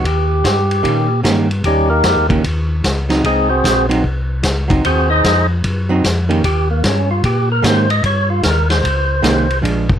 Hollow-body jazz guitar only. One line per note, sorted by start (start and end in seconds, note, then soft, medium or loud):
0.83 1.07 D#3 medium
0.83 1.07 A#3 medium
0.83 1.07 C#4 medium
0.83 1.07 G4 medium
1.23 1.47 D#3 medium
1.23 1.47 A#3 medium
1.23 1.47 C#4 medium
1.23 1.47 G4 medium
2.29 2.42 D#3 medium
2.29 2.42 A#3 medium
2.29 2.42 C#4 medium
2.29 2.43 G4 medium
3.09 3.22 F#3 medium
3.09 3.22 C4 medium
3.09 3.22 D#4 medium
3.89 4.02 F#3 medium
3.89 4.02 C4 medium
3.89 4.02 D#4 medium
4.68 4.81 F#3 medium
4.68 4.82 C4 medium
4.68 4.82 D#4 medium
5.89 6.02 F#3 medium
5.89 6.02 C4 medium
5.89 6.02 D#4 medium
6.29 6.41 D#3 medium
6.29 6.41 A#3 medium
6.29 6.42 C#4 medium
6.29 6.42 G4 medium
7.62 7.86 D#3 medium
7.62 7.86 A#3 medium
7.62 7.86 C#4 medium
7.62 7.86 G4 medium
9.22 9.46 D#3 medium
9.22 9.46 A#3 medium
9.22 9.46 C#4 medium
9.22 9.46 G4 medium
9.62 9.85 F3 medium
9.62 9.86 G#3 medium
9.62 9.86 D4 medium